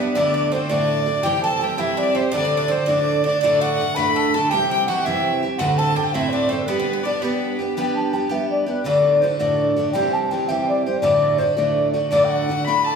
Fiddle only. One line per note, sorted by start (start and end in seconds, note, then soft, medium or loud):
0.00 0.18 B4 medium
0.17 0.53 D5 medium
0.55 0.72 C5 medium
0.71 1.27 D5 medium
1.25 1.44 G5 medium
1.44 1.65 A5 medium
1.63 1.82 G5 medium
1.80 2.04 E5 medium
2.03 2.18 D5 medium
2.17 2.34 C5 medium
2.35 2.53 D5 medium
2.55 2.73 D5 medium
2.72 2.91 C5 medium
2.90 3.26 D5 medium
3.27 3.42 D5 medium
3.43 3.65 D5 medium
3.64 3.98 F#5 medium
3.97 4.36 B5 medium
4.34 4.50 A5 medium
4.50 4.69 G5 medium
4.71 4.87 G5 medium
4.88 5.06 F#5 medium
5.05 5.42 E5 medium
5.59 5.68 F#5 medium
5.78 5.97 A5 medium
5.96 6.16 G5 medium
6.14 6.36 E5 medium
6.34 6.53 D5 medium
6.52 6.67 C5 medium
6.67 7.05 B4 medium
7.03 7.23 D5 medium
7.22 7.77 B4 medium
12.11 12.32 D5 medium
12.30 12.66 F#5 medium
12.65 12.86 B5 medium
12.84 12.95 A5 medium